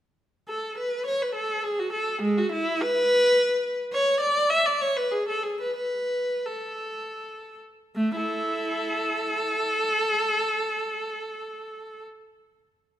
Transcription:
0, 0, Header, 1, 2, 480
1, 0, Start_track
1, 0, Key_signature, 3, "major"
1, 0, Tempo, 579710
1, 409, Time_signature, 3, 2, 24, 8
1, 2329, Tempo, 565504
1, 3769, Tempo, 633580
1, 4729, Tempo, 711744
1, 5689, Tempo, 747198
1, 9413, End_track
2, 0, Start_track
2, 0, Title_t, "Viola"
2, 0, Program_c, 0, 41
2, 401, Note_on_c, 0, 69, 56
2, 628, Note_off_c, 0, 69, 0
2, 646, Note_on_c, 0, 71, 65
2, 879, Note_on_c, 0, 73, 66
2, 882, Note_off_c, 0, 71, 0
2, 999, Note_off_c, 0, 73, 0
2, 1013, Note_on_c, 0, 71, 62
2, 1119, Note_on_c, 0, 69, 65
2, 1127, Note_off_c, 0, 71, 0
2, 1351, Note_off_c, 0, 69, 0
2, 1355, Note_on_c, 0, 68, 70
2, 1474, Note_off_c, 0, 68, 0
2, 1486, Note_on_c, 0, 66, 66
2, 1594, Note_on_c, 0, 69, 69
2, 1599, Note_off_c, 0, 66, 0
2, 1832, Note_off_c, 0, 69, 0
2, 1836, Note_on_c, 0, 56, 73
2, 1958, Note_off_c, 0, 56, 0
2, 1969, Note_on_c, 0, 66, 72
2, 2088, Note_on_c, 0, 64, 83
2, 2089, Note_off_c, 0, 66, 0
2, 2326, Note_off_c, 0, 64, 0
2, 2331, Note_on_c, 0, 71, 104
2, 3162, Note_off_c, 0, 71, 0
2, 3278, Note_on_c, 0, 73, 85
2, 3504, Note_off_c, 0, 73, 0
2, 3512, Note_on_c, 0, 74, 90
2, 3758, Note_on_c, 0, 76, 90
2, 3759, Note_off_c, 0, 74, 0
2, 3877, Note_off_c, 0, 76, 0
2, 3883, Note_on_c, 0, 74, 77
2, 3997, Note_off_c, 0, 74, 0
2, 4000, Note_on_c, 0, 73, 75
2, 4114, Note_on_c, 0, 71, 72
2, 4115, Note_off_c, 0, 73, 0
2, 4226, Note_on_c, 0, 68, 67
2, 4232, Note_off_c, 0, 71, 0
2, 4349, Note_off_c, 0, 68, 0
2, 4358, Note_on_c, 0, 69, 67
2, 4467, Note_on_c, 0, 68, 60
2, 4476, Note_off_c, 0, 69, 0
2, 4596, Note_off_c, 0, 68, 0
2, 4603, Note_on_c, 0, 71, 54
2, 4712, Note_off_c, 0, 71, 0
2, 4721, Note_on_c, 0, 71, 62
2, 5187, Note_off_c, 0, 71, 0
2, 5192, Note_on_c, 0, 69, 51
2, 5929, Note_off_c, 0, 69, 0
2, 6174, Note_on_c, 0, 57, 70
2, 6308, Note_on_c, 0, 64, 65
2, 6309, Note_on_c, 0, 69, 79
2, 6310, Note_off_c, 0, 57, 0
2, 7240, Note_off_c, 0, 64, 0
2, 8792, Note_off_c, 0, 69, 0
2, 9413, End_track
0, 0, End_of_file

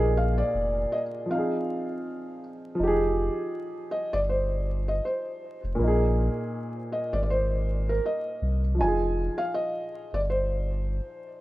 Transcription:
0, 0, Header, 1, 4, 480
1, 0, Start_track
1, 0, Key_signature, -4, "minor"
1, 0, Tempo, 750000
1, 1787, Time_signature, 4, 2, 24, 8
1, 7302, End_track
2, 0, Start_track
2, 0, Title_t, "Felt piano"
2, 0, Program_c, 0, 0
2, 111, Note_on_c, 0, 77, 87
2, 242, Note_on_c, 0, 74, 95
2, 250, Note_off_c, 0, 77, 0
2, 590, Note_on_c, 0, 75, 83
2, 596, Note_off_c, 0, 74, 0
2, 643, Note_off_c, 0, 75, 0
2, 836, Note_on_c, 0, 77, 83
2, 1526, Note_off_c, 0, 77, 0
2, 2504, Note_on_c, 0, 75, 91
2, 2644, Note_on_c, 0, 74, 103
2, 2647, Note_off_c, 0, 75, 0
2, 2676, Note_off_c, 0, 74, 0
2, 2748, Note_on_c, 0, 72, 75
2, 3125, Note_on_c, 0, 75, 78
2, 3136, Note_off_c, 0, 72, 0
2, 3220, Note_off_c, 0, 75, 0
2, 3232, Note_on_c, 0, 72, 76
2, 3581, Note_off_c, 0, 72, 0
2, 4431, Note_on_c, 0, 75, 82
2, 4563, Note_on_c, 0, 74, 96
2, 4570, Note_off_c, 0, 75, 0
2, 4592, Note_off_c, 0, 74, 0
2, 4626, Note_on_c, 0, 74, 76
2, 4666, Note_off_c, 0, 74, 0
2, 4673, Note_on_c, 0, 72, 82
2, 5051, Note_on_c, 0, 70, 84
2, 5058, Note_off_c, 0, 72, 0
2, 5143, Note_off_c, 0, 70, 0
2, 5156, Note_on_c, 0, 75, 83
2, 5503, Note_off_c, 0, 75, 0
2, 5636, Note_on_c, 0, 80, 94
2, 6002, Note_on_c, 0, 77, 100
2, 6020, Note_off_c, 0, 80, 0
2, 6108, Note_on_c, 0, 75, 92
2, 6109, Note_off_c, 0, 77, 0
2, 6490, Note_on_c, 0, 74, 98
2, 6496, Note_off_c, 0, 75, 0
2, 6522, Note_off_c, 0, 74, 0
2, 6590, Note_on_c, 0, 72, 76
2, 7283, Note_off_c, 0, 72, 0
2, 7302, End_track
3, 0, Start_track
3, 0, Title_t, "Upright piano"
3, 0, Program_c, 1, 0
3, 0, Control_c, 1, 64, 127
3, 0, Note_on_c, 1, 46, 72
3, 0, Note_on_c, 1, 58, 75
3, 0, Note_on_c, 1, 63, 66
3, 0, Note_on_c, 1, 68, 89
3, 790, Note_off_c, 1, 46, 0
3, 804, Note_off_c, 1, 58, 0
3, 806, Note_on_c, 1, 53, 68
3, 817, Note_off_c, 1, 63, 0
3, 831, Note_on_c, 1, 60, 60
3, 834, Control_c, 1, 64, 0
3, 852, Note_off_c, 1, 68, 0
3, 858, Note_on_c, 1, 63, 61
3, 884, Note_on_c, 1, 68, 70
3, 950, Control_c, 1, 64, 127
3, 1750, Note_off_c, 1, 53, 0
3, 1760, Note_on_c, 1, 53, 80
3, 1770, Note_off_c, 1, 60, 0
3, 1778, Note_off_c, 1, 63, 0
3, 1787, Note_on_c, 1, 63, 66
3, 1796, Control_c, 1, 64, 0
3, 1797, Note_off_c, 1, 68, 0
3, 1813, Note_on_c, 1, 67, 76
3, 1840, Note_on_c, 1, 68, 91
3, 1909, Control_c, 1, 64, 127
3, 3668, Note_off_c, 1, 53, 0
3, 3681, Note_on_c, 1, 46, 80
3, 3682, Note_off_c, 1, 63, 0
3, 3694, Note_off_c, 1, 67, 0
3, 3708, Note_off_c, 1, 68, 0
3, 3708, Note_on_c, 1, 58, 69
3, 3714, Control_c, 1, 64, 0
3, 3735, Note_on_c, 1, 63, 65
3, 3762, Note_on_c, 1, 68, 86
3, 3838, Control_c, 1, 64, 127
3, 5588, Note_off_c, 1, 46, 0
3, 5598, Note_on_c, 1, 53, 67
3, 5602, Note_off_c, 1, 58, 0
3, 5613, Note_off_c, 1, 63, 0
3, 5622, Note_on_c, 1, 63, 55
3, 5629, Note_off_c, 1, 68, 0
3, 5634, Control_c, 1, 64, 0
3, 5651, Note_on_c, 1, 65, 61
3, 5677, Note_on_c, 1, 68, 71
3, 5736, Control_c, 1, 64, 127
3, 7302, Note_off_c, 1, 53, 0
3, 7302, Note_off_c, 1, 63, 0
3, 7302, Note_off_c, 1, 65, 0
3, 7302, Note_off_c, 1, 68, 0
3, 7302, End_track
4, 0, Start_track
4, 0, Title_t, "Sub bass"
4, 0, Program_c, 2, 38
4, 0, Note_on_c, 2, 34, 104
4, 273, Note_off_c, 2, 34, 0
4, 348, Note_on_c, 2, 29, 89
4, 549, Note_off_c, 2, 29, 0
4, 1790, Note_on_c, 2, 29, 110
4, 2106, Note_off_c, 2, 29, 0
4, 2645, Note_on_c, 2, 31, 84
4, 3202, Note_off_c, 2, 31, 0
4, 3608, Note_on_c, 2, 29, 86
4, 3693, Note_off_c, 2, 29, 0
4, 3710, Note_on_c, 2, 34, 105
4, 4026, Note_off_c, 2, 34, 0
4, 4563, Note_on_c, 2, 32, 91
4, 5121, Note_off_c, 2, 32, 0
4, 5388, Note_on_c, 2, 36, 76
4, 5631, Note_on_c, 2, 29, 121
4, 5641, Note_off_c, 2, 36, 0
4, 5946, Note_off_c, 2, 29, 0
4, 6484, Note_on_c, 2, 31, 81
4, 7042, Note_off_c, 2, 31, 0
4, 7302, End_track
0, 0, End_of_file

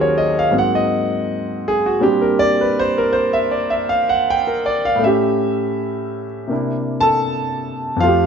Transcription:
0, 0, Header, 1, 2, 480
1, 0, Start_track
1, 0, Tempo, 750000
1, 1286, Time_signature, 4, 2, 24, 8
1, 5288, End_track
2, 0, Start_track
2, 0, Title_t, "Grand piano"
2, 0, Program_c, 0, 0
2, 0, Control_c, 0, 64, 127
2, 0, Note_on_c, 0, 39, 64
2, 0, Note_on_c, 0, 51, 61
2, 0, Note_on_c, 0, 54, 64
2, 0, Note_on_c, 0, 61, 68
2, 0, Note_on_c, 0, 66, 75
2, 0, Note_on_c, 0, 67, 71
2, 0, Note_on_c, 0, 68, 89
2, 0, Note_on_c, 0, 70, 80
2, 0, Note_on_c, 0, 72, 77
2, 8, Note_on_c, 0, 73, 76
2, 113, Note_on_c, 0, 75, 88
2, 168, Note_off_c, 0, 73, 0
2, 217, Note_off_c, 0, 75, 0
2, 249, Note_on_c, 0, 77, 86
2, 313, Note_off_c, 0, 39, 0
2, 321, Note_off_c, 0, 54, 0
2, 324, Note_off_c, 0, 77, 0
2, 327, Note_off_c, 0, 51, 0
2, 327, Note_on_c, 0, 44, 53
2, 330, Note_on_c, 0, 54, 44
2, 335, Note_on_c, 0, 58, 46
2, 336, Note_on_c, 0, 60, 55
2, 337, Note_off_c, 0, 70, 0
2, 337, Control_c, 0, 64, 0
2, 339, Note_off_c, 0, 68, 0
2, 340, Note_off_c, 0, 66, 0
2, 340, Note_off_c, 0, 67, 0
2, 342, Note_off_c, 0, 72, 0
2, 349, Note_off_c, 0, 61, 0
2, 374, Note_on_c, 0, 78, 91
2, 456, Control_c, 0, 64, 127
2, 481, Note_on_c, 0, 75, 83
2, 510, Note_off_c, 0, 78, 0
2, 582, Note_off_c, 0, 75, 0
2, 1074, Note_on_c, 0, 68, 91
2, 1177, Note_off_c, 0, 68, 0
2, 1191, Note_on_c, 0, 66, 73
2, 1274, Note_off_c, 0, 66, 0
2, 1276, Note_off_c, 0, 60, 0
2, 1282, Note_on_c, 0, 46, 54
2, 1286, Note_off_c, 0, 44, 0
2, 1286, Note_on_c, 0, 60, 53
2, 1287, Note_off_c, 0, 54, 0
2, 1288, Note_on_c, 0, 55, 52
2, 1289, Note_on_c, 0, 62, 60
2, 1290, Note_off_c, 0, 58, 0
2, 1295, Control_c, 0, 64, 0
2, 1298, Note_on_c, 0, 67, 83
2, 1399, Control_c, 0, 64, 127
2, 1417, Note_on_c, 0, 70, 74
2, 1451, Note_off_c, 0, 67, 0
2, 1531, Note_on_c, 0, 74, 110
2, 1591, Note_off_c, 0, 70, 0
2, 1645, Note_off_c, 0, 74, 0
2, 1670, Note_on_c, 0, 71, 76
2, 1753, Note_off_c, 0, 71, 0
2, 1789, Note_on_c, 0, 72, 97
2, 1906, Note_on_c, 0, 70, 83
2, 1936, Note_off_c, 0, 72, 0
2, 2001, Note_on_c, 0, 72, 88
2, 2076, Note_off_c, 0, 70, 0
2, 2120, Note_off_c, 0, 72, 0
2, 2133, Note_on_c, 0, 76, 92
2, 2224, Note_off_c, 0, 76, 0
2, 2249, Note_on_c, 0, 74, 77
2, 2370, Note_on_c, 0, 76, 81
2, 2406, Note_off_c, 0, 74, 0
2, 2491, Note_on_c, 0, 77, 92
2, 2547, Note_off_c, 0, 76, 0
2, 2605, Note_off_c, 0, 77, 0
2, 2620, Note_on_c, 0, 78, 93
2, 2708, Note_off_c, 0, 78, 0
2, 2755, Note_on_c, 0, 79, 99
2, 2862, Note_on_c, 0, 70, 63
2, 2899, Note_off_c, 0, 79, 0
2, 2981, Note_on_c, 0, 74, 93
2, 3034, Note_off_c, 0, 70, 0
2, 3090, Note_off_c, 0, 74, 0
2, 3106, Note_on_c, 0, 77, 93
2, 3173, Note_on_c, 0, 45, 64
2, 3191, Note_off_c, 0, 77, 0
2, 3195, Note_on_c, 0, 57, 57
2, 3203, Note_off_c, 0, 46, 0
2, 3205, Note_off_c, 0, 60, 0
2, 3206, Note_off_c, 0, 55, 0
2, 3207, Note_off_c, 0, 62, 0
2, 3214, Control_c, 0, 64, 0
2, 3217, Note_on_c, 0, 61, 58
2, 3225, Note_on_c, 0, 76, 86
2, 3241, Note_on_c, 0, 67, 68
2, 3332, Control_c, 0, 64, 127
2, 3997, Note_off_c, 0, 76, 0
2, 4145, Note_on_c, 0, 48, 49
2, 4150, Note_off_c, 0, 45, 0
2, 4155, Note_on_c, 0, 58, 47
2, 4161, Note_off_c, 0, 57, 0
2, 4168, Note_on_c, 0, 62, 45
2, 4172, Note_off_c, 0, 61, 0
2, 4174, Control_c, 0, 64, 0
2, 4178, Note_on_c, 0, 64, 50
2, 4184, Note_off_c, 0, 67, 0
2, 4277, Control_c, 0, 64, 127
2, 4483, Note_on_c, 0, 81, 114
2, 4497, Note_on_c, 0, 69, 70
2, 5097, Note_on_c, 0, 41, 57
2, 5104, Note_off_c, 0, 69, 0
2, 5117, Note_off_c, 0, 48, 0
2, 5118, Note_on_c, 0, 53, 50
2, 5123, Note_off_c, 0, 58, 0
2, 5123, Note_on_c, 0, 77, 95
2, 5129, Note_off_c, 0, 62, 0
2, 5134, Note_off_c, 0, 64, 0
2, 5137, Control_c, 0, 64, 0
2, 5138, Note_on_c, 0, 65, 67
2, 5142, Note_off_c, 0, 81, 0
2, 5145, Note_on_c, 0, 57, 51
2, 5167, Note_on_c, 0, 67, 61
2, 5257, Control_c, 0, 64, 127
2, 5288, Note_off_c, 0, 41, 0
2, 5288, Note_off_c, 0, 53, 0
2, 5288, Note_off_c, 0, 57, 0
2, 5288, Note_off_c, 0, 65, 0
2, 5288, Note_off_c, 0, 67, 0
2, 5288, Note_off_c, 0, 77, 0
2, 5288, End_track
0, 0, End_of_file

